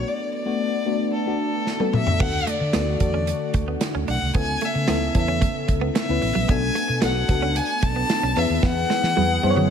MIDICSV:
0, 0, Header, 1, 8, 480
1, 0, Start_track
1, 0, Tempo, 535714
1, 54, Time_signature, 4, 2, 24, 8
1, 8692, End_track
2, 0, Start_track
2, 0, Title_t, "Violin"
2, 0, Program_c, 0, 40
2, 72, Note_on_c, 0, 74, 86
2, 303, Note_off_c, 0, 74, 0
2, 312, Note_on_c, 0, 74, 87
2, 987, Note_off_c, 0, 74, 0
2, 1023, Note_on_c, 0, 69, 75
2, 1702, Note_off_c, 0, 69, 0
2, 1750, Note_on_c, 0, 76, 89
2, 1985, Note_on_c, 0, 78, 104
2, 1998, Note_off_c, 0, 76, 0
2, 2230, Note_on_c, 0, 74, 90
2, 2243, Note_off_c, 0, 78, 0
2, 2698, Note_off_c, 0, 74, 0
2, 2704, Note_on_c, 0, 74, 81
2, 3145, Note_off_c, 0, 74, 0
2, 3668, Note_on_c, 0, 78, 85
2, 3884, Note_off_c, 0, 78, 0
2, 3907, Note_on_c, 0, 80, 106
2, 4164, Note_on_c, 0, 76, 90
2, 4177, Note_off_c, 0, 80, 0
2, 4629, Note_off_c, 0, 76, 0
2, 4642, Note_on_c, 0, 76, 83
2, 5075, Note_off_c, 0, 76, 0
2, 5351, Note_on_c, 0, 76, 87
2, 5827, Note_on_c, 0, 80, 105
2, 5841, Note_off_c, 0, 76, 0
2, 6296, Note_off_c, 0, 80, 0
2, 6302, Note_on_c, 0, 78, 92
2, 6780, Note_on_c, 0, 80, 105
2, 6793, Note_off_c, 0, 78, 0
2, 7021, Note_on_c, 0, 81, 121
2, 7034, Note_off_c, 0, 80, 0
2, 7507, Note_on_c, 0, 76, 96
2, 7520, Note_off_c, 0, 81, 0
2, 7747, Note_on_c, 0, 78, 112
2, 7760, Note_off_c, 0, 76, 0
2, 8692, Note_off_c, 0, 78, 0
2, 8692, End_track
3, 0, Start_track
3, 0, Title_t, "FM electric piano"
3, 0, Program_c, 1, 5
3, 0, Control_c, 1, 64, 127
3, 0, Note_on_c, 1, 57, 65
3, 0, Note_on_c, 1, 59, 64
3, 0, Note_on_c, 1, 62, 64
3, 0, Note_on_c, 1, 66, 80
3, 290, Note_off_c, 1, 57, 0
3, 291, Note_off_c, 1, 59, 0
3, 294, Note_off_c, 1, 62, 0
3, 295, Note_off_c, 1, 66, 0
3, 407, Note_on_c, 1, 57, 67
3, 411, Note_on_c, 1, 59, 63
3, 413, Note_on_c, 1, 62, 65
3, 417, Note_on_c, 1, 66, 78
3, 638, Note_off_c, 1, 57, 0
3, 640, Note_off_c, 1, 59, 0
3, 641, Note_off_c, 1, 62, 0
3, 643, Note_off_c, 1, 66, 0
3, 765, Note_on_c, 1, 57, 66
3, 768, Note_on_c, 1, 59, 61
3, 772, Note_on_c, 1, 62, 63
3, 775, Note_on_c, 1, 66, 71
3, 997, Note_off_c, 1, 57, 0
3, 998, Note_off_c, 1, 59, 0
3, 1000, Note_off_c, 1, 62, 0
3, 1002, Note_off_c, 1, 66, 0
3, 1129, Note_on_c, 1, 57, 65
3, 1133, Note_on_c, 1, 59, 57
3, 1136, Note_on_c, 1, 62, 57
3, 1141, Note_on_c, 1, 66, 70
3, 1435, Note_off_c, 1, 57, 0
3, 1437, Note_off_c, 1, 59, 0
3, 1439, Note_off_c, 1, 62, 0
3, 1441, Note_off_c, 1, 66, 0
3, 1610, Note_on_c, 1, 57, 78
3, 1613, Note_on_c, 1, 59, 69
3, 1616, Note_on_c, 1, 62, 73
3, 1620, Note_on_c, 1, 69, 89
3, 1840, Note_off_c, 1, 57, 0
3, 1841, Note_off_c, 1, 59, 0
3, 1842, Note_off_c, 1, 62, 0
3, 1844, Note_off_c, 1, 69, 0
3, 1965, Note_on_c, 1, 57, 67
3, 1968, Note_on_c, 1, 62, 62
3, 1970, Note_on_c, 1, 66, 64
3, 1976, Note_on_c, 1, 69, 73
3, 1984, Control_c, 1, 64, 0
3, 2158, Control_c, 1, 64, 127
3, 2273, Note_off_c, 1, 57, 0
3, 2274, Note_off_c, 1, 62, 0
3, 2276, Note_off_c, 1, 66, 0
3, 2278, Note_off_c, 1, 69, 0
3, 2448, Note_on_c, 1, 57, 66
3, 2453, Note_on_c, 1, 62, 59
3, 2453, Note_on_c, 1, 66, 63
3, 2458, Note_on_c, 1, 69, 72
3, 2603, Note_off_c, 1, 57, 0
3, 2605, Note_off_c, 1, 62, 0
3, 2605, Note_off_c, 1, 66, 0
3, 2607, Note_off_c, 1, 69, 0
3, 2688, Note_on_c, 1, 57, 72
3, 2693, Note_on_c, 1, 62, 70
3, 2696, Note_on_c, 1, 66, 64
3, 2698, Note_on_c, 1, 69, 77
3, 3298, Note_off_c, 1, 57, 0
3, 3300, Note_off_c, 1, 62, 0
3, 3302, Note_off_c, 1, 66, 0
3, 3303, Note_off_c, 1, 69, 0
3, 3891, Note_on_c, 1, 59, 72
3, 3896, Note_on_c, 1, 61, 65
3, 3899, Note_on_c, 1, 64, 63
3, 3902, Note_on_c, 1, 69, 76
3, 3907, Control_c, 1, 64, 0
3, 4061, Control_c, 1, 64, 127
3, 4196, Note_off_c, 1, 59, 0
3, 4198, Note_off_c, 1, 61, 0
3, 4200, Note_off_c, 1, 64, 0
3, 4201, Note_off_c, 1, 69, 0
3, 4371, Note_on_c, 1, 59, 67
3, 4374, Note_on_c, 1, 61, 63
3, 4376, Note_on_c, 1, 64, 58
3, 4382, Note_on_c, 1, 69, 72
3, 4524, Note_off_c, 1, 59, 0
3, 4526, Note_off_c, 1, 61, 0
3, 4526, Note_off_c, 1, 64, 0
3, 4530, Note_off_c, 1, 69, 0
3, 4612, Note_on_c, 1, 59, 75
3, 4616, Note_on_c, 1, 61, 70
3, 4620, Note_on_c, 1, 64, 68
3, 4622, Note_on_c, 1, 69, 81
3, 5144, Note_off_c, 1, 59, 0
3, 5146, Note_off_c, 1, 61, 0
3, 5148, Note_off_c, 1, 64, 0
3, 5149, Note_off_c, 1, 69, 0
3, 5456, Note_on_c, 1, 59, 67
3, 5461, Note_on_c, 1, 61, 64
3, 5463, Note_on_c, 1, 64, 65
3, 5467, Note_on_c, 1, 71, 78
3, 5682, Note_off_c, 1, 59, 0
3, 5685, Note_off_c, 1, 61, 0
3, 5686, Note_off_c, 1, 64, 0
3, 5688, Note_off_c, 1, 71, 0
3, 5818, Note_on_c, 1, 59, 72
3, 5821, Note_on_c, 1, 62, 69
3, 5826, Control_c, 1, 64, 0
3, 5827, Note_on_c, 1, 66, 64
3, 5828, Note_on_c, 1, 69, 78
3, 5963, Control_c, 1, 64, 127
3, 6119, Note_off_c, 1, 59, 0
3, 6121, Note_off_c, 1, 62, 0
3, 6124, Note_off_c, 1, 66, 0
3, 6125, Note_off_c, 1, 69, 0
3, 6293, Note_on_c, 1, 59, 72
3, 6295, Note_on_c, 1, 62, 65
3, 6297, Note_on_c, 1, 66, 64
3, 6303, Note_on_c, 1, 69, 78
3, 6445, Note_off_c, 1, 59, 0
3, 6446, Note_off_c, 1, 62, 0
3, 6447, Note_off_c, 1, 66, 0
3, 6450, Note_off_c, 1, 69, 0
3, 6535, Note_on_c, 1, 59, 77
3, 6535, Note_on_c, 1, 62, 71
3, 6541, Note_on_c, 1, 66, 71
3, 6547, Note_on_c, 1, 69, 87
3, 7141, Note_off_c, 1, 59, 0
3, 7142, Note_off_c, 1, 62, 0
3, 7144, Note_off_c, 1, 66, 0
3, 7147, Note_off_c, 1, 69, 0
3, 7490, Note_on_c, 1, 59, 73
3, 7496, Note_on_c, 1, 64, 67
3, 7498, Note_on_c, 1, 68, 67
3, 7503, Control_c, 1, 64, 0
3, 7503, Note_on_c, 1, 71, 84
3, 7649, Control_c, 1, 64, 127
3, 8068, Note_off_c, 1, 59, 0
3, 8071, Note_off_c, 1, 64, 0
3, 8072, Note_off_c, 1, 68, 0
3, 8074, Note_off_c, 1, 71, 0
3, 8203, Note_on_c, 1, 59, 71
3, 8207, Note_on_c, 1, 64, 69
3, 8213, Note_on_c, 1, 68, 61
3, 8214, Note_on_c, 1, 71, 78
3, 8360, Note_off_c, 1, 59, 0
3, 8362, Note_off_c, 1, 64, 0
3, 8365, Note_off_c, 1, 68, 0
3, 8366, Note_off_c, 1, 71, 0
3, 8448, Note_on_c, 1, 59, 88
3, 8452, Note_on_c, 1, 64, 88
3, 8454, Note_on_c, 1, 68, 83
3, 8459, Note_on_c, 1, 72, 80
3, 8514, Note_off_c, 1, 72, 0
3, 8515, Note_on_c, 1, 73, 100
3, 8692, Note_off_c, 1, 59, 0
3, 8692, Note_off_c, 1, 64, 0
3, 8692, Note_off_c, 1, 68, 0
3, 8692, Note_off_c, 1, 73, 0
3, 8692, End_track
4, 0, Start_track
4, 0, Title_t, "Analog synth pad"
4, 0, Program_c, 2, 89
4, 0, Note_on_c, 2, 57, 76
4, 0, Note_on_c, 2, 59, 66
4, 0, Note_on_c, 2, 62, 83
4, 1952, Note_off_c, 2, 57, 0
4, 1952, Note_off_c, 2, 59, 0
4, 1953, Note_off_c, 2, 62, 0
4, 1972, Note_on_c, 2, 57, 69
4, 1972, Note_on_c, 2, 66, 83
4, 1974, Note_on_c, 2, 50, 73
4, 3873, Note_off_c, 2, 66, 0
4, 3875, Note_off_c, 2, 50, 0
4, 3895, Note_on_c, 2, 49, 78
4, 3901, Note_on_c, 2, 59, 82
4, 5795, Note_off_c, 2, 49, 0
4, 5802, Note_on_c, 2, 62, 77
4, 7457, Note_off_c, 2, 57, 0
4, 7471, Note_off_c, 2, 62, 0
4, 7490, Note_on_c, 2, 68, 88
4, 7493, Note_on_c, 2, 52, 76
4, 8692, Note_off_c, 2, 52, 0
4, 8692, Note_off_c, 2, 59, 0
4, 8692, Note_off_c, 2, 68, 0
4, 8692, End_track
5, 0, Start_track
5, 0, Title_t, "Clean electric guitar"
5, 0, Program_c, 3, 27
5, 1974, Note_on_c, 3, 59, 77
5, 2049, Note_off_c, 3, 59, 0
5, 2214, Note_on_c, 3, 57, 70
5, 2289, Note_off_c, 3, 57, 0
5, 2456, Note_on_c, 3, 59, 81
5, 2531, Note_off_c, 3, 59, 0
5, 2813, Note_on_c, 3, 61, 61
5, 2888, Note_off_c, 3, 61, 0
5, 3175, Note_on_c, 3, 57, 68
5, 3250, Note_off_c, 3, 57, 0
5, 3296, Note_on_c, 3, 59, 69
5, 3371, Note_off_c, 3, 59, 0
5, 3537, Note_on_c, 3, 61, 73
5, 3611, Note_off_c, 3, 61, 0
5, 3656, Note_on_c, 3, 62, 73
5, 3731, Note_off_c, 3, 62, 0
5, 3898, Note_on_c, 3, 59, 73
5, 3972, Note_off_c, 3, 59, 0
5, 4138, Note_on_c, 3, 57, 74
5, 4212, Note_off_c, 3, 57, 0
5, 4375, Note_on_c, 3, 59, 83
5, 4450, Note_off_c, 3, 59, 0
5, 4733, Note_on_c, 3, 61, 70
5, 4809, Note_off_c, 3, 61, 0
5, 4850, Note_on_c, 3, 57, 73
5, 4926, Note_off_c, 3, 57, 0
5, 5209, Note_on_c, 3, 59, 78
5, 5286, Note_off_c, 3, 59, 0
5, 5333, Note_on_c, 3, 57, 80
5, 5408, Note_off_c, 3, 57, 0
5, 5690, Note_on_c, 3, 54, 71
5, 5767, Note_off_c, 3, 54, 0
5, 5811, Note_on_c, 3, 59, 80
5, 5887, Note_off_c, 3, 59, 0
5, 6051, Note_on_c, 3, 57, 79
5, 6127, Note_off_c, 3, 57, 0
5, 6288, Note_on_c, 3, 59, 89
5, 6365, Note_off_c, 3, 59, 0
5, 6651, Note_on_c, 3, 61, 64
5, 6727, Note_off_c, 3, 61, 0
5, 7013, Note_on_c, 3, 57, 77
5, 7088, Note_off_c, 3, 57, 0
5, 7132, Note_on_c, 3, 59, 71
5, 7208, Note_off_c, 3, 59, 0
5, 7377, Note_on_c, 3, 61, 74
5, 7451, Note_off_c, 3, 61, 0
5, 7496, Note_on_c, 3, 61, 75
5, 7571, Note_off_c, 3, 61, 0
5, 7732, Note_on_c, 3, 59, 74
5, 7808, Note_off_c, 3, 59, 0
5, 7974, Note_on_c, 3, 56, 74
5, 8049, Note_off_c, 3, 56, 0
5, 8215, Note_on_c, 3, 54, 83
5, 8290, Note_off_c, 3, 54, 0
5, 8577, Note_on_c, 3, 54, 73
5, 8651, Note_off_c, 3, 54, 0
5, 8692, End_track
6, 0, Start_track
6, 0, Title_t, "Fretless electric bass"
6, 0, Program_c, 4, 35
6, 1975, Note_on_c, 4, 38, 98
6, 2154, Note_off_c, 4, 38, 0
6, 2336, Note_on_c, 4, 50, 80
6, 2425, Note_off_c, 4, 50, 0
6, 2457, Note_on_c, 4, 38, 77
6, 2636, Note_off_c, 4, 38, 0
6, 2693, Note_on_c, 4, 40, 85
6, 2964, Note_off_c, 4, 40, 0
6, 3174, Note_on_c, 4, 38, 79
6, 3354, Note_off_c, 4, 38, 0
6, 3538, Note_on_c, 4, 38, 79
6, 3626, Note_off_c, 4, 38, 0
6, 3658, Note_on_c, 4, 35, 93
6, 3747, Note_off_c, 4, 35, 0
6, 3779, Note_on_c, 4, 36, 77
6, 3867, Note_off_c, 4, 36, 0
6, 3896, Note_on_c, 4, 37, 97
6, 4075, Note_off_c, 4, 37, 0
6, 4258, Note_on_c, 4, 49, 91
6, 4346, Note_off_c, 4, 49, 0
6, 4377, Note_on_c, 4, 37, 91
6, 4556, Note_off_c, 4, 37, 0
6, 4614, Note_on_c, 4, 40, 95
6, 4884, Note_off_c, 4, 40, 0
6, 5094, Note_on_c, 4, 37, 90
6, 5274, Note_off_c, 4, 37, 0
6, 5458, Note_on_c, 4, 37, 78
6, 5546, Note_off_c, 4, 37, 0
6, 5581, Note_on_c, 4, 33, 94
6, 5668, Note_off_c, 4, 33, 0
6, 5695, Note_on_c, 4, 34, 90
6, 5785, Note_off_c, 4, 34, 0
6, 5816, Note_on_c, 4, 35, 101
6, 5995, Note_off_c, 4, 35, 0
6, 6175, Note_on_c, 4, 47, 98
6, 6265, Note_off_c, 4, 47, 0
6, 6296, Note_on_c, 4, 35, 87
6, 6475, Note_off_c, 4, 35, 0
6, 6532, Note_on_c, 4, 37, 91
6, 6803, Note_off_c, 4, 37, 0
6, 7013, Note_on_c, 4, 35, 82
6, 7193, Note_off_c, 4, 35, 0
6, 7373, Note_on_c, 4, 35, 75
6, 7463, Note_off_c, 4, 35, 0
6, 7494, Note_on_c, 4, 40, 92
6, 7584, Note_off_c, 4, 40, 0
6, 7613, Note_on_c, 4, 39, 88
6, 7703, Note_off_c, 4, 39, 0
6, 7733, Note_on_c, 4, 40, 96
6, 7914, Note_off_c, 4, 40, 0
6, 8092, Note_on_c, 4, 52, 88
6, 8183, Note_off_c, 4, 52, 0
6, 8216, Note_on_c, 4, 40, 88
6, 8395, Note_off_c, 4, 40, 0
6, 8454, Note_on_c, 4, 42, 94
6, 8692, Note_off_c, 4, 42, 0
6, 8692, End_track
7, 0, Start_track
7, 0, Title_t, "Muted clean electric guitar strokes"
7, 2334, Note_on_c, 9, 29, 40
7, 2423, Note_off_c, 9, 29, 0
7, 2695, Note_on_c, 9, 29, 42
7, 2785, Note_off_c, 9, 29, 0
7, 2939, Note_on_c, 9, 29, 41
7, 3028, Note_off_c, 9, 29, 0
7, 3419, Note_on_c, 9, 29, 39
7, 3508, Note_off_c, 9, 29, 0
7, 4257, Note_on_c, 9, 29, 42
7, 4347, Note_off_c, 9, 29, 0
7, 4612, Note_on_c, 9, 29, 41
7, 4702, Note_off_c, 9, 29, 0
7, 5089, Note_on_c, 9, 29, 41
7, 5179, Note_off_c, 9, 29, 0
7, 5572, Note_on_c, 9, 29, 43
7, 5661, Note_off_c, 9, 29, 0
7, 6168, Note_on_c, 9, 29, 42
7, 6257, Note_off_c, 9, 29, 0
7, 6527, Note_on_c, 9, 29, 44
7, 6617, Note_off_c, 9, 29, 0
7, 6768, Note_on_c, 9, 29, 42
7, 6857, Note_off_c, 9, 29, 0
7, 7255, Note_on_c, 9, 29, 45
7, 7345, Note_off_c, 9, 29, 0
7, 8093, Note_on_c, 9, 29, 42
7, 8183, Note_off_c, 9, 29, 0
7, 8456, Note_on_c, 9, 29, 44
7, 8545, Note_off_c, 9, 29, 0
7, 8692, End_track
8, 0, Start_track
8, 0, Title_t, "Drums"
8, 1494, Note_on_c, 9, 38, 52
8, 1584, Note_off_c, 9, 38, 0
8, 1611, Note_on_c, 9, 48, 59
8, 1701, Note_off_c, 9, 48, 0
8, 1733, Note_on_c, 9, 45, 82
8, 1823, Note_off_c, 9, 45, 0
8, 1853, Note_on_c, 9, 43, 85
8, 1942, Note_off_c, 9, 43, 0
8, 1972, Note_on_c, 9, 49, 84
8, 1973, Note_on_c, 9, 36, 107
8, 2061, Note_off_c, 9, 49, 0
8, 2063, Note_off_c, 9, 36, 0
8, 2215, Note_on_c, 9, 42, 69
8, 2305, Note_off_c, 9, 42, 0
8, 2449, Note_on_c, 9, 38, 106
8, 2450, Note_on_c, 9, 42, 75
8, 2538, Note_off_c, 9, 38, 0
8, 2540, Note_off_c, 9, 42, 0
8, 2689, Note_on_c, 9, 42, 72
8, 2692, Note_on_c, 9, 36, 78
8, 2779, Note_off_c, 9, 42, 0
8, 2782, Note_off_c, 9, 36, 0
8, 2932, Note_on_c, 9, 42, 82
8, 3022, Note_off_c, 9, 42, 0
8, 3169, Note_on_c, 9, 42, 76
8, 3173, Note_on_c, 9, 36, 86
8, 3259, Note_off_c, 9, 42, 0
8, 3263, Note_off_c, 9, 36, 0
8, 3411, Note_on_c, 9, 42, 86
8, 3414, Note_on_c, 9, 38, 99
8, 3501, Note_off_c, 9, 42, 0
8, 3504, Note_off_c, 9, 38, 0
8, 3653, Note_on_c, 9, 46, 74
8, 3743, Note_off_c, 9, 46, 0
8, 3892, Note_on_c, 9, 42, 84
8, 3895, Note_on_c, 9, 36, 102
8, 3982, Note_off_c, 9, 42, 0
8, 3984, Note_off_c, 9, 36, 0
8, 4131, Note_on_c, 9, 42, 68
8, 4221, Note_off_c, 9, 42, 0
8, 4369, Note_on_c, 9, 38, 113
8, 4371, Note_on_c, 9, 42, 79
8, 4459, Note_off_c, 9, 38, 0
8, 4460, Note_off_c, 9, 42, 0
8, 4611, Note_on_c, 9, 42, 73
8, 4614, Note_on_c, 9, 36, 86
8, 4701, Note_off_c, 9, 42, 0
8, 4703, Note_off_c, 9, 36, 0
8, 4854, Note_on_c, 9, 36, 91
8, 4857, Note_on_c, 9, 42, 82
8, 4944, Note_off_c, 9, 36, 0
8, 4946, Note_off_c, 9, 42, 0
8, 5093, Note_on_c, 9, 42, 77
8, 5094, Note_on_c, 9, 36, 84
8, 5182, Note_off_c, 9, 42, 0
8, 5184, Note_off_c, 9, 36, 0
8, 5335, Note_on_c, 9, 42, 89
8, 5337, Note_on_c, 9, 38, 107
8, 5424, Note_off_c, 9, 42, 0
8, 5427, Note_off_c, 9, 38, 0
8, 5572, Note_on_c, 9, 46, 73
8, 5662, Note_off_c, 9, 46, 0
8, 5815, Note_on_c, 9, 36, 101
8, 5815, Note_on_c, 9, 42, 88
8, 5904, Note_off_c, 9, 42, 0
8, 5905, Note_off_c, 9, 36, 0
8, 6057, Note_on_c, 9, 42, 74
8, 6146, Note_off_c, 9, 42, 0
8, 6287, Note_on_c, 9, 38, 109
8, 6288, Note_on_c, 9, 42, 83
8, 6376, Note_off_c, 9, 38, 0
8, 6378, Note_off_c, 9, 42, 0
8, 6529, Note_on_c, 9, 42, 71
8, 6531, Note_on_c, 9, 36, 86
8, 6619, Note_off_c, 9, 42, 0
8, 6620, Note_off_c, 9, 36, 0
8, 6772, Note_on_c, 9, 42, 83
8, 6862, Note_off_c, 9, 42, 0
8, 7011, Note_on_c, 9, 42, 77
8, 7012, Note_on_c, 9, 36, 85
8, 7101, Note_off_c, 9, 42, 0
8, 7102, Note_off_c, 9, 36, 0
8, 7253, Note_on_c, 9, 42, 90
8, 7255, Note_on_c, 9, 38, 108
8, 7342, Note_off_c, 9, 42, 0
8, 7345, Note_off_c, 9, 38, 0
8, 7489, Note_on_c, 9, 46, 76
8, 7579, Note_off_c, 9, 46, 0
8, 7732, Note_on_c, 9, 36, 104
8, 7732, Note_on_c, 9, 38, 56
8, 7821, Note_off_c, 9, 38, 0
8, 7822, Note_off_c, 9, 36, 0
8, 7975, Note_on_c, 9, 38, 63
8, 8065, Note_off_c, 9, 38, 0
8, 8094, Note_on_c, 9, 38, 58
8, 8184, Note_off_c, 9, 38, 0
8, 8214, Note_on_c, 9, 48, 68
8, 8303, Note_off_c, 9, 48, 0
8, 8452, Note_on_c, 9, 48, 75
8, 8542, Note_off_c, 9, 48, 0
8, 8570, Note_on_c, 9, 47, 66
8, 8660, Note_off_c, 9, 47, 0
8, 8692, End_track
0, 0, End_of_file